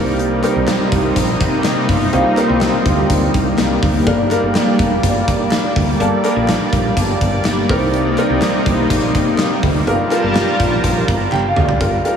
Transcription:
0.00 0.41 C2 medium
0.00 4.02 C3 medium
0.00 0.38 G3 medium
0.00 9.83 G3 medium
0.00 7.65 A#3 medium
0.00 0.38 C4 medium
0.00 0.38 D#4 medium
0.00 4.02 D#4 medium
0.00 0.38 A#4 medium
0.00 1.85 D5 medium
0.19 closed hi-hat medium
0.43 1.29 G3 medium
0.43 1.29 C4 medium
0.43 1.29 D#4 medium
0.43 1.30 A#4 medium
0.43 clap medium
0.43 closed hi-hat medium
0.56 0.65 C2 medium
0.68 snare loud
0.68 clap medium
0.68 closed hi-hat medium
0.92 1.10 C2 medium
0.92 kick medium
0.92 closed hi-hat medium
1.16 1.34 A#1 medium
1.16 kick medium
1.16 closed hi-hat loud
1.40 kick medium
1.40 closed hi-hat medium
1.64 snare loud
1.64 clap medium
1.64 closed hi-hat medium
1.89 2.07 G1 medium
1.89 4.04 C4 medium
1.89 kick medium
1.89 open hi-hat medium
2.12 2.22 C2 loud
2.12 2.34 G3 medium
2.12 2.34 C4 medium
2.12 2.34 D#4 medium
2.12 2.35 F4 medium
2.12 closed hi-hat medium
2.36 3.23 G3 medium
2.36 3.23 C4 medium
2.36 3.23 D#4 medium
2.36 3.23 A#4 medium
2.36 clap medium
2.36 closed hi-hat medium
2.49 2.67 C2 medium
2.61 snare loud
2.61 clap medium
2.61 closed hi-hat medium
2.86 3.04 D2 medium
2.86 kick medium
2.86 closed hi-hat medium
3.10 3.28 D2 medium
3.10 kick medium
3.10 closed hi-hat loud
3.34 3.52 C2 medium
3.34 kick medium
3.34 closed hi-hat medium
3.58 3.76 C2 medium
3.58 snare loud
3.58 clap medium
3.58 closed hi-hat medium
3.83 4.01 D2 medium
3.83 kick medium
3.83 open hi-hat medium
4.06 4.34 G1 loud
4.06 4.28 G3 medium
4.06 4.28 A#3 medium
4.06 4.28 D4 medium
4.06 4.28 A#4 medium
4.06 11.77 D5 medium
4.06 kick loud
4.06 closed hi-hat medium
4.30 5.16 G3 medium
4.30 5.16 A#3 medium
4.30 5.16 D4 medium
4.30 5.17 A#4 medium
4.30 clap medium
4.30 closed hi-hat medium
4.43 4.52 G1 medium
4.55 snare loud
4.55 clap medium
4.55 closed hi-hat medium
4.79 4.97 F1 medium
4.79 kick medium
4.79 closed hi-hat medium
5.03 5.21 G1 medium
5.03 kick medium
5.03 closed hi-hat loud
5.28 kick medium
5.28 closed hi-hat medium
5.51 snare loud
5.51 clap medium
5.51 closed hi-hat medium
5.76 5.94 D2 medium
5.76 kick medium
5.76 open hi-hat medium
5.99 6.09 G1 medium
5.99 6.21 G3 medium
5.99 6.21 A#3 medium
5.99 6.21 D4 medium
5.99 6.22 A4 medium
5.99 closed hi-hat medium
6.24 7.10 G3 medium
6.24 7.10 A#3 medium
6.24 7.10 D4 medium
6.24 7.10 A#4 medium
6.24 clap medium
6.24 closed hi-hat medium
6.36 6.54 A#1 medium
6.48 snare loud
6.48 clap medium
6.48 closed hi-hat medium
6.73 6.91 A#1 medium
6.73 kick medium
6.73 closed hi-hat medium
6.97 7.15 G1 loud
6.97 kick medium
6.97 closed hi-hat loud
7.21 7.39 G1 medium
7.21 kick medium
7.21 closed hi-hat medium
7.45 7.63 G1 medium
7.45 snare loud
7.45 clap medium
7.45 closed hi-hat medium
7.69 8.15 C2 loud
7.69 9.85 C3 medium
7.69 8.12 G3 medium
7.69 9.85 A#3 medium
7.69 8.12 C4 medium
7.69 9.85 D#4 medium
7.69 8.12 D#4 medium
7.69 8.13 A#4 loud
7.69 kick loud
7.69 open hi-hat medium
7.94 closed hi-hat medium
8.17 9.03 G3 medium
8.17 9.03 C4 medium
8.17 9.04 D#4 medium
8.17 9.04 A#4 medium
8.17 clap medium
8.17 closed hi-hat medium
8.30 8.39 C2 medium
8.42 snare loud
8.42 clap medium
8.42 closed hi-hat medium
8.66 8.84 C2 medium
8.66 kick medium
8.66 closed hi-hat medium
8.90 9.08 A#1 loud
8.90 kick medium
8.90 closed hi-hat loud
9.15 kick medium
9.15 closed hi-hat medium
9.38 snare loud
9.38 clap medium
9.38 closed hi-hat medium
9.63 9.81 D2 medium
9.63 kick medium
9.63 open hi-hat medium
9.86 9.96 G1 loud
9.86 10.08 G3 medium
9.86 11.79 G3 medium
9.86 10.08 D4 medium
9.86 11.79 F4 medium
9.86 10.09 F4 medium
9.86 11.79 A#4 medium
9.86 10.09 A#4 medium
9.86 11.79 A5 medium
9.86 closed hi-hat medium
10.11 10.97 G3 medium
10.11 10.97 D4 medium
10.11 10.97 F4 medium
10.11 10.97 A#4 medium
10.11 clap medium
10.11 closed hi-hat medium
10.24 10.42 G1 medium
10.35 snare loud
10.35 clap medium
10.35 closed hi-hat medium
10.60 10.78 A#1 medium
10.60 kick medium
10.60 closed hi-hat medium
10.84 11.02 A#1 medium
10.84 kick medium
10.84 closed hi-hat loud
11.08 11.26 G1 medium
11.08 11.31 A#5 medium
11.08 kick medium
11.08 closed hi-hat medium
11.32 11.51 G1 medium
11.32 11.47 G5 medium
11.32 clap medium
11.32 high tom medium
11.48 11.63 F5 medium
11.56 11.75 D2 medium
11.56 mid tom medium
11.65 11.80 D5 medium
11.69 floor tom medium
11.80 11.99 G1 loud
11.80 12.02 G3 medium
11.80 12.02 D4 medium
11.80 12.02 F4 medium
11.80 12.02 A#4 medium
11.80 kick loud
11.80 closed hi-hat medium
12.04 12.17 G3 medium
12.04 12.17 D4 medium
12.04 12.17 F4 medium
12.04 12.17 A#4 medium
12.04 closed hi-hat medium

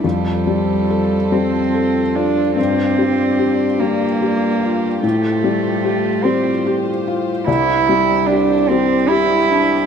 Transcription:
0.03 2.54 F2 soft
0.03 1.34 G3 medium
0.03 5.03 F4 soft
0.03 2.57 A4 soft
0.03 2.58 C5 soft
0.47 1.16 G3 soft
0.91 1.59 A4 soft
1.32 2.00 G3 soft
1.32 2.17 C4 medium
1.74 2.41 A4 soft
2.15 2.56 D4 medium
2.15 2.58 F4 soft
2.57 4.99 G2 medium
2.57 3.82 C4 medium
2.57 7.47 G4 soft
2.57 5.04 D5 soft
2.99 3.65 G3 soft
3.39 4.05 G4 soft
3.80 4.46 G3 soft
3.80 5.02 A#3 medium
4.22 4.87 G4 soft
4.63 5.04 F4 soft
5.03 7.43 A2 medium
5.03 6.26 A3 medium
5.03 7.44 F4 soft
5.03 9.86 C5 medium
5.44 6.09 G3 soft
5.85 6.49 G4 soft
6.24 6.90 G3 soft
6.24 6.65 C4 medium
6.66 7.31 G4 medium
7.08 7.48 F4 soft
7.47 9.86 C2 medium
7.47 9.86 D4 medium
7.47 8.28 E4 loud
7.47 9.86 G4 medium
7.89 8.54 G3 medium
8.27 8.70 D4 medium
8.27 8.94 G4 medium
8.69 9.35 G3 medium
8.69 9.10 C4 medium
9.09 9.86 E4 loud
9.09 9.75 G4 medium
9.51 9.86 D4 medium

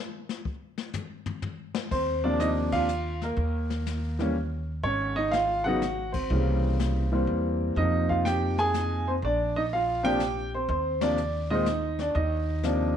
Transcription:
0.29 snare medium
0.45 kick medium
0.78 snare soft
0.93 floor tom medium
0.93 hi-hat pedal medium
1.26 floor tom medium
1.42 floor tom loud
1.75 snare loud
1.91 3.34 D#2 medium
1.91 2.23 C4 medium
1.91 2.25 C5 medium
1.91 brush sweep soft
1.91 kick medium
1.91 crash medium
2.24 2.86 C3 medium
2.24 2.86 F3 medium
2.24 2.87 A#3 medium
2.24 2.87 D4 medium
2.24 2.39 D5 medium
2.40 2.49 D#4 medium
2.40 2.47 D#5 medium
2.40 snare medium
2.40 hi-hat pedal medium
2.72 3.19 F4 medium
2.72 3.23 F5 loud
2.72 kick medium
2.72 ride medium
2.89 hi-hat pedal medium
3.22 4.17 A#3 medium
3.22 4.16 A#4 medium
3.22 snare soft
3.37 4.79 D#2 medium
3.37 brush sweep soft
3.70 snare soft
3.86 snare medium
3.86 hi-hat pedal medium
4.19 4.34 E3 medium
4.19 4.34 G3 medium
4.19 4.34 A#3 medium
4.19 4.35 C#4 medium
4.19 snare soft
4.83 6.26 G#1 medium
4.83 5.15 C#4 medium
4.83 5.17 C#5 medium
4.83 brush sweep soft
5.16 5.33 D#4 medium
5.16 5.33 D#5 medium
5.31 5.62 F5 medium
5.31 snare medium
5.31 hi-hat pedal medium
5.36 5.64 F4 medium
5.64 5.80 C#3 medium
5.64 5.81 F#3 medium
5.64 5.81 B3 medium
5.64 5.81 D#4 medium
5.64 6.12 F#4 medium
5.64 6.10 F#5 medium
5.82 snare medium
5.82 hi-hat pedal medium
6.12 7.08 C4 medium
6.12 7.07 C5 medium
6.12 kick medium
6.12 ride medium
6.30 7.24 C2 medium
6.30 7.06 C#3 medium
6.30 7.05 E3 soft
6.30 7.06 G3 soft
6.30 7.06 A#3 soft
6.30 brush sweep soft
6.79 snare medium
6.79 hi-hat pedal medium
7.12 7.74 E3 medium
7.12 7.74 G3 medium
7.12 7.74 A#3 medium
7.12 7.74 C4 medium
7.27 7.73 E2 medium
7.76 9.19 F2 medium
7.76 9.13 C3 medium
7.76 9.13 F3 medium
7.76 9.14 A#3 soft
7.76 9.14 D#4 medium
7.76 8.07 D#5 medium
7.76 brush sweep soft
8.09 8.25 F4 medium
8.09 8.26 F5 medium
8.09 kick soft
8.25 8.57 G4 medium
8.25 8.55 G5 medium
8.25 snare medium
8.25 hi-hat pedal medium
8.58 9.04 G#4 medium
8.58 9.09 G#5 medium
8.58 snare soft
8.74 snare medium
8.74 hi-hat pedal medium
9.07 9.14 C4 medium
9.07 9.12 C5 medium
9.22 10.65 A#1 medium
9.22 9.57 D5 medium
9.22 brush sweep soft
9.26 9.55 D4 medium
9.56 9.63 D#4 medium
9.56 9.61 D#5 medium
9.73 10.04 F4 medium
9.73 10.06 F5 medium
10.03 10.19 C3 medium
10.03 10.19 F3 medium
10.03 10.19 A#3 medium
10.03 10.20 D4 medium
10.03 10.51 G4 medium
10.03 10.50 G5 loud
10.20 snare medium
10.20 hi-hat pedal medium
10.54 10.70 C4 medium
10.54 10.68 C5 medium
10.69 12.11 D#2 medium
10.69 11.01 C4 medium
10.69 11.03 C5 medium
10.69 brush sweep soft
11.01 11.17 C3 medium
11.01 11.17 F3 medium
11.01 11.17 A#3 medium
11.01 11.17 D4 medium
11.01 11.52 D5 medium
11.01 snare medium
11.01 ride medium
11.18 hi-hat pedal soft
11.50 11.65 A#2 medium
11.50 11.65 D#3 medium
11.50 11.66 G#3 medium
11.50 11.66 C4 medium
11.50 11.97 D#4 medium
11.50 11.96 D#5 medium
11.66 snare medium
11.66 hi-hat pedal medium
11.99 12.12 D4 medium
11.99 12.09 D5 medium
11.99 snare soft
12.11 12.15 D5 medium
12.15 12.97 D#2 medium
12.15 12.97 D#4 medium
12.15 12.97 D#5 medium
12.15 brush sweep soft
12.63 12.93 C3 medium
12.63 12.94 F3 medium
12.63 12.94 A#3 medium
12.63 12.94 D4 medium
12.63 snare medium
12.63 hi-hat pedal medium

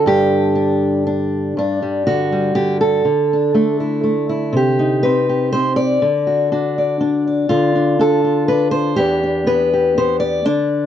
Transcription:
0.00 1.56 D3 medium
0.00 0.55 D4 soft
0.06 1.52 G2 medium
0.06 1.56 G4 loud
0.55 1.05 D4 soft
1.07 1.53 D4 medium
1.57 3.02 G2 medium
1.57 2.06 D4 medium
1.82 2.31 G3 soft
2.07 2.54 D3 soft
2.07 3.05 F#4 medium
2.32 3.06 G3 soft
2.55 3.04 D3 medium
2.55 2.80 G4 medium
2.81 3.79 A4 medium
3.05 5.02 D3 medium
3.33 3.55 D4 soft
3.54 4.02 A3 medium
3.54 4.56 D4 soft
3.80 4.28 E4 soft
4.04 4.50 A3 medium
4.29 4.54 E4 soft
4.53 5.98 C3 medium
4.53 5.28 G4 medium
4.79 5.99 D#4 soft
5.03 5.53 C4 medium
5.03 5.52 B4 medium
5.29 5.99 G4 soft
5.53 5.99 C4 medium
5.53 5.76 C5 medium
5.76 6.75 D5 medium
6.02 7.49 D3 medium
6.27 6.51 F#4 soft
6.52 7.00 D4 medium
6.52 7.48 F#4 soft
6.78 7.27 D5 soft
7.01 7.75 D4 medium
7.27 8.00 D5 soft
7.49 8.98 D3 medium
7.49 8.23 F4 medium
7.75 7.99 D4 soft
7.99 8.49 D4 medium
7.99 8.48 A4 medium
8.24 8.96 F4 soft
8.48 8.99 D4 medium
8.48 8.71 B4 medium
8.71 8.97 C5 medium
8.96 10.45 E2 medium
8.96 9.45 B3 soft
8.96 9.23 D4 soft
8.96 9.71 G4 medium
9.23 10.45 D4 soft
9.46 9.96 B3 medium
9.46 9.97 B4 medium
9.73 10.44 G4 soft
9.98 10.44 B3 medium
9.98 10.19 C5 medium
10.20 10.45 D5 medium
10.45 10.86 D3 medium
10.45 10.86 D4 medium

